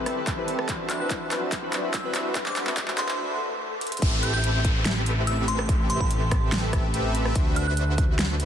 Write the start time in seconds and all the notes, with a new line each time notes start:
Already playing: G3 C4 E4 G4 A4 B4 A5, riser
0.06 C4 G4 A4 B4 E5, cross-stick, closed hi-hat
0.16 C4 E4 G4 B4
0.27 C4 G4 A4 B4 E5, kick, clap, closed hi-hat
0.37 C4 E4 G4 B4
0.48 closed hi-hat
0.59 C4 G4 A4 B4 E5, cross-stick
0.68 F#3 C4 D4 E4 F#4 B4 C5 E5, kick, clap, closed hi-hat
0.89 F#6, clap, closed hi-hat
0.99 C4 D4 E4 F#4 B4 C5 E5 F#6
1.10 kick, clap, closed hi-hat
1.30 C4 E4 F#4 B4, clap, closed hi-hat
1.52 kick, clap, closed hi-hat
1.62 C4 E4 F#4 B4
1.73 clap, closed hi-hat
1.83 C4 E4 F#4 B4
1.94 E6, kick, clap, closed hi-hat
2.03 C4 D4 E4 F#4 B4 C5 E5
2.15 clap, closed hi-hat
2.34 C4 E4 F#4 B4, kick, clap, closed hi-hat
2.46 D6, clap
2.56 clap, closed hi-hat
2.66 C4 D4 E4 F#4 B4 C5 E5, clap
2.77 kick, clap, closed hi-hat
2.88 clap
2.97 C4 E4 F#4 B4 C6, clap, closed hi-hat
3.09 clap
3.19 swell
3.81 closed hi-hat
3.87 closed hi-hat
3.92 closed hi-hat
3.97 closed hi-hat
4.02 A1 C3 A3 C4 G4 A4 B4 E5, kick, closed hi-hat, crash, downlifter
4.23 G6, closed hi-hat
4.34 C4 G4 A4 B4 E5 G6
4.44 closed hi-hat
4.65 kick, closed hi-hat
4.85 snare, closed hi-hat
5.06 closed hi-hat
5.27 E6, closed hi-hat
5.38 C4 G4 A4 B4 E5
5.48 C6, closed hi-hat
5.59 C6, cross-stick
5.69 kick, closed hi-hat
5.90 C6, closed hi-hat
6.00 C4 G4 A4 B4 E5 C6, kick
6.11 closed hi-hat
6.31 kick, cross-stick, closed hi-hat
6.52 snare, closed hi-hat
6.73 C4 G4 A4 B4 E5, kick, cross-stick, closed hi-hat
6.94 C4 G4 A4 B4 E5, closed hi-hat
7.15 closed hi-hat
7.25 C4 G4 A4 B4 E5, cross-stick
7.35 D2 E3 C4 D4 F#4 B4 C5 E5, kick, closed hi-hat
7.56 F#6, closed hi-hat
7.67 D4 F#4 B4 C5 E5 F#6
7.77 closed hi-hat
7.98 kick, closed hi-hat
8.19 snare, closed hi-hat
8.40 closed hi-hat